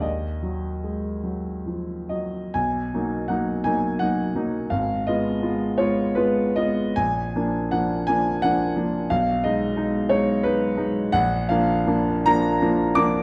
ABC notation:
X:1
M:6/8
L:1/8
Q:3/8=56
K:Cblyd
V:1 name="Grand piano"
e3 z2 e | a2 ^f a f2 | f e2 d c e | a2 g a g2 |
f e2 d c z | g f2 b2 =d' |]
V:2 name="Grand piano"
E,, G, A, G, F, G, | =B,,, [^F,^A,^D] [F,A,D] [F,A,D] [F,A,D] [F,A,D] | A,,, [A,CF] [A,CF] [A,CF] [A,CF] [A,CF] | B,,, [F,B,=D] [F,B,D] [F,B,D] [F,B,D] [F,B,D] |
C,, [A,E] [A,E] [A,E] [A,E] [A,E] | B,,, [F,B,=D] [F,B,D] [F,B,D] [F,B,D] [F,B,D] |]